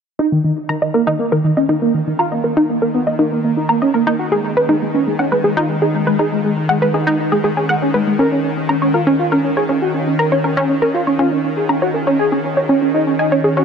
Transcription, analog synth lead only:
0.19 D#4
0.32 D#3
0.44 D#3
0.69 D#3
0.82 D#3
0.94 A#3
1.07 D#3
1.19 A#3
1.32 D#3
1.44 D#3
1.57 C#4
1.69 D#3
1.82 A#3
1.94 D#3
2.07 D#3
2.19 F4
2.32 A#3
2.44 A#3
2.69 A#3
2.82 A#3
2.94 B3
3.07 A#3
3.19 A#3
3.32 A#3
3.44 A#3
3.57 D#4
3.69 A#3
3.82 C#4
3.94 A#3
4.07 A#3
4.19 F#4
4.32 G#3
4.44 G#3
4.69 G#3
4.82 G#3
4.94 C#4
5.07 G#3
5.19 C#4
5.32 G#3
5.44 G#3
5.57 F4
5.69 G#3
5.82 D#4
5.94 G#3
6.07 G#3
6.19 G#4
6.32 G#3
6.44 G#3
6.69 G#3
6.82 G#3
6.94 D#4
7.07 G#3
7.19 D#4
7.32 G#3
7.44 G#3
7.57 C#4
7.69 G#3
7.82 C#4
7.94 G#3
8.07 G#3
8.19 A#4
8.32 C#4
8.44 C#4
8.69 C#4
8.82 C#4
8.94 F4
9.07 C#4
9.19 F4
9.32 C#4
9.44 C#4
9.57 G#4
9.69 C#4
9.82 F#4
9.94 C#4
10.07 C#4
10.19 A#4
10.32 C#4
10.44 C#4
10.69 C#4
10.82 C#4
10.94 F4
11.07 C#4
11.19 F4
11.32 C#4
11.44 C#4
11.57 G#4
11.69 C#4
11.82 F#4
11.94 C#4
12.07 C#4
12.19 G#4
12.32 C#4
12.44 C#4
12.69 C#4
12.82 C#4
12.94 D#4
13.07 C#4
13.19 D#4
13.32 C#4
13.44 C#4
13.57 F#4

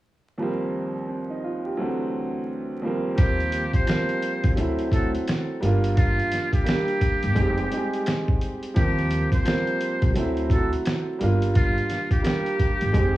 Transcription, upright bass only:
3.18 D#2
4.44 C2
4.58 D2
5.63 G1
7.24 G1
7.36 F1
8.77 D#2
10.02 C2
10.16 D2
11.21 G1
12.82 G1
12.94 F1

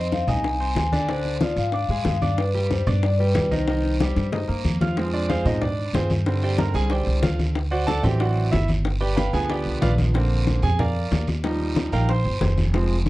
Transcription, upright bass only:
Already playing: F2
0.27 C2
0.75 D2
1.56 G#2
1.89 G#2
2.05 G2
2.87 G2
3.35 C2
4.16 G2
4.49 G2
4.64 F2
5.45 G#2
5.93 G2
6.74 C2
7.07 C2
7.23 D2
8.03 A1
8.52 G1
9.33 D2
9.66 C2
9.82 A#1
10.63 F2
11.11 D#2
11.92 A#1
12.25 G1
12.41 F1

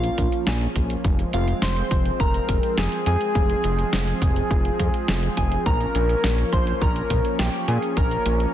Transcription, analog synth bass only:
0.18 A#1
0.47 A#1
0.76 A#1
1.05 F1
1.33 F1
1.62 F1
1.91 F1
2.20 F1
2.49 F1
2.77 F1
3.06 F2
3.35 F1
3.64 F1
3.93 F1
4.22 F1
4.51 F1
4.80 F2
5.08 F1
5.37 F1
5.66 A#1
5.95 A#1
6.24 A#1
6.53 A#1
6.81 A#1
7.10 A#1
7.39 A#1
7.68 A#2
7.97 A#1
8.26 A#1

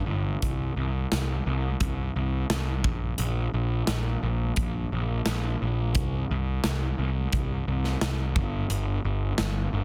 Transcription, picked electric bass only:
0.06 G1
0.43 C2
0.76 C2
1.12 C2
1.46 C2
1.80 C2
2.16 C2
2.50 C2
2.84 A#1
3.19 A#1
3.54 A#1
3.87 A#1
4.23 A#1
4.56 A#1
4.92 A#1
5.27 A#1
5.62 A#1
5.95 C2
6.31 C2
6.65 C2
6.98 C2
7.33 C2
7.67 C2
8.02 C2
8.36 G1
8.70 G1
9.05 G1
9.39 G1
9.73 G1

